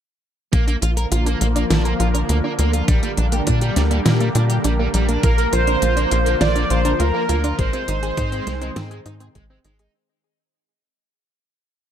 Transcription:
0.53 A#1 D3 F3 A#3, kick, closed hi-hat
0.67 A#3 D4, closed hi-hat
0.82 A#1 F4, closed hi-hat
0.97 A#4, closed hi-hat
1.12 A#1 F4, closed hi-hat
1.26 A#3 D4, closed hi-hat
1.41 A#1 A#3, closed hi-hat
1.56 A#3 D4, closed hi-hat
1.70 A#1 D4 F4, snare, closed hi-hat
1.85 A#3 A#4, closed hi-hat
2.00 A#1 F4, closed hi-hat
2.15 D4 A#4, closed hi-hat
2.29 D2 A#3, closed hi-hat
2.44 A#3 D4
2.59 D2 A#3 F4, closed hi-hat
2.73 F4 A#4, closed hi-hat
2.88 A#1 G3 A#3 D4, kick, closed hi-hat
3.03 G3 A#3, closed hi-hat
3.17 A#1 G3 D4, closed hi-hat
3.32 A#3 G4, closed hi-hat
3.47 A#2 D4, kick, closed hi-hat
3.61 G3 G4, closed hi-hat
3.76 D2 G3 D4, snare, closed hi-hat
3.91 G3 A#3, closed hi-hat
4.06 A#2 G3 A#3, snare, closed hi-hat
4.20 G3 A#3, closed hi-hat
4.35 A#2 D4, closed hi-hat
4.50 G4, closed hi-hat
4.64 A#1 G3 D4, closed hi-hat
4.79 G3 A#3
4.94 A#1 G3, closed hi-hat
5.09 A#3 D4, closed hi-hat
5.23 A#1 F3 A#3 F4 A#4, kick, closed hi-hat
5.38 A#3 A#4, closed hi-hat
5.53 A#1 F4 C5, closed hi-hat
5.67 D4 A#4, closed hi-hat
5.82 A#1 A#3 F4, closed hi-hat
5.97 A#3 D4, closed hi-hat
6.11 A#1 A#3 F4, closed hi-hat
6.26 A#3 A#4, closed hi-hat
6.41 A#1 D4 F4 D5, snare, closed hi-hat
6.56 A#3 D4, closed hi-hat
6.70 A#1 A#3 F4 C5, closed hi-hat
6.85 D4 A#4, closed hi-hat
7.00 D2 A#3 F4 A#4, closed hi-hat
7.15 A#3 A#4
7.29 D2 A#3 F4, closed hi-hat
7.44 D4 F4, closed hi-hat
7.59 G#1 D#3 G#3 C4 C5, kick, closed hi-hat
7.73 G#3 C4, closed hi-hat
7.88 G#1 D#4, closed hi-hat
8.03 G#4, closed hi-hat
8.17 G#2 D#4, kick, closed hi-hat
8.32 G#3 C4, closed hi-hat
8.47 C2 G#3, snare, closed hi-hat
8.62 G#3 C4, closed hi-hat
8.76 G#2 C4 D#4, snare, closed hi-hat
8.91 G#3 G#4, closed hi-hat
9.06 G#2 D#4, closed hi-hat
9.20 C4 G#4, closed hi-hat
9.35 G#1 G#3, kick, closed hi-hat
9.50 G#3 C4
9.65 G#1 G#3 D#4, closed hi-hat
9.79 D#4 G#4, closed hi-hat

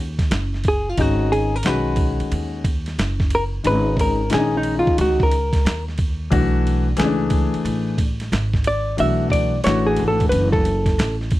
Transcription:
Already playing: D#2
0.19 kick, snare, ride
0.31 F#1, snare, hi-hat pedal, ride
0.54 snare
0.64 kick, ride
0.68 G#4
0.89 F4
0.97 G#1 D#3 G#3 C#4 D#4 F#4, kick, ride
1.32 G#4, ride
1.56 A#4
1.63 B1 D#3 G#3 C#4 F#4 B4, snare, hi-hat pedal, ride
1.96 kick, ride
2.20 muted upright bass stroke, ride
2.32 D#2, ride
2.64 kick, ride
2.86 snare, ride
2.98 F#1, snare, hi-hat pedal, ride
3.20 kick, snare
3.30 ride
3.35 A#4
3.64 G#1 D#3 G#3 C#4 D#4 B4, ride
3.97 kick, ride
4.01 A#4
4.30 A#1 D#3 G#3 C#4 D4, snare, hi-hat pedal, ride
4.34 G#4
4.38 D#4
4.57 D#4
4.63 ride
4.79 F4
4.87 muted upright bass stroke, kick
4.98 C#2 F#4, ride
5.20 A#4, kick
5.32 ride
5.53 kick, snare, ride
5.65 D#2, snare, hi-hat pedal, ride
5.88 snare
5.98 kick, ride
6.31 B1 E3 A3 D4 F#4, kick, ride
6.67 ride
6.97 C#2 E3 A3 C#4 G#4, snare, hi-hat pedal, ride
7.04 D4
7.30 kick, ride
7.54 muted upright bass stroke, ride
7.65 A1, ride
7.98 kick, ride
8.20 snare, ride
8.32 G#1, snare, hi-hat pedal, ride
8.54 kick, snare
8.64 D5, ride
8.97 B1 E3 A3 D4 F#4 E5, ride
9.30 D5, kick, ride
9.64 A1 E3 A3 D4 F#4 C#5, snare, hi-hat pedal, ride
9.87 G#4
9.96 G#1, ride
10.08 A4
10.20 kick, ride
10.29 F#1 B4, ride
10.52 A4, kick
10.65 ride
10.86 kick, snare, ride
10.98 A1, snare, hi-hat pedal, ride
11.21 snare
11.31 kick, ride

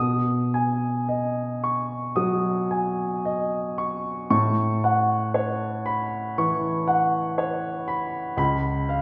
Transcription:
Already playing: B2 D#6
0.54 G#5
1.09 D#5
1.64 C#6
2.16 F#3 D#6
2.71 G#5
3.25 D#5
3.78 C#6
4.30 A2 C#6
4.84 F#5
5.34 C#5
5.86 B5
6.38 E3 C#6
6.88 F#5
7.38 C#5
7.88 B5
8.37 C#2 B5
8.89 F5

